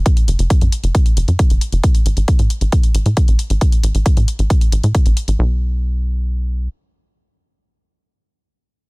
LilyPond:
<<
  \new Staff \with { instrumentName = "Analog synth bass" } { \clef bass \time 4/4 \key a \mixolydian \tempo 4 = 135 r8 fis,,16 fis,,16 r16 fis,16 r16 fis,,16 r8 fis,,16 fis,16 r16 fis,,16 r16 fis,,16 | r8 a,,16 a,,16 r16 a,16 r16 a,,16 r8 a,,16 a,16 r16 a,,16 r16 a,,16 | r8 a,,16 a,,16 r16 a,16 r16 a,,16 r8 a,,16 a,16 r16 a,,16 r16 a,,16 | b,,2. r4 |
r1 | }
  \new DrumStaff \with { instrumentName = "Drums" } \drummode { \time 4/4 <hh bd>16 hh16 hh16 hh16 <hh bd>16 hh16 hh16 hh16 <hh bd>16 hh16 hh16 hh16 <hh bd>16 hh16 hh16 hh16 | <hh bd>16 hh16 hh16 hh16 <hh bd>16 hh16 hh16 hh16 <hh bd>16 hh16 hh16 hh16 <hh bd>16 hh16 hh16 hh16 | <hh bd>16 hh16 hh16 hh16 <hh bd>16 hh16 hh16 hh16 <hh bd>16 hh16 hh16 hh16 <hh bd>16 hh16 hh16 hh16 | r4 r4 r4 r4 |
r4 r4 r4 r4 | }
>>